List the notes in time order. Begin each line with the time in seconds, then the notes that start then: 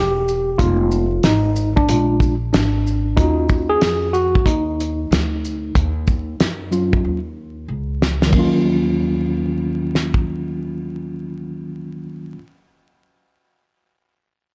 Already playing: E1 G4
0.28 shaker
0.58 F1 G#3 B3 D#4 F4, kick, closed hi-hat
0.91 shaker
1.23 G#1 D#4, snare, closed hi-hat
1.56 shaker
1.76 D4, kick
1.88 A#1 G#3 D4 F4, closed hi-hat
2.20 kick, shaker
2.53 G#1 D4, snare, closed hi-hat
2.87 shaker
3.16 D#2 C#4 D#4 F4 F#4, kick, closed hi-hat
3.49 kick, shaker
3.70 G#4
3.81 F2, snare, closed hi-hat
4.13 F#4, shaker
4.35 kick
4.46 D#2 D#4, kick, closed hi-hat
4.80 closed hi-hat, shaker
5.11 D2, snare, closed hi-hat
5.45 shaker
5.75 D#2, kick, closed hi-hat
6.07 kick, shaker
6.40 F#2, snare, closed hi-hat
6.71 F#3 C#4 F4, shaker
6.93 kick
7.04 D#2
7.68 C#2
8.02 snare
8.22 snare
8.26 D#3 F#3
8.33 D#2 A#3 C#4, kick, ride
8.39 F4
9.95 snare
10.14 kick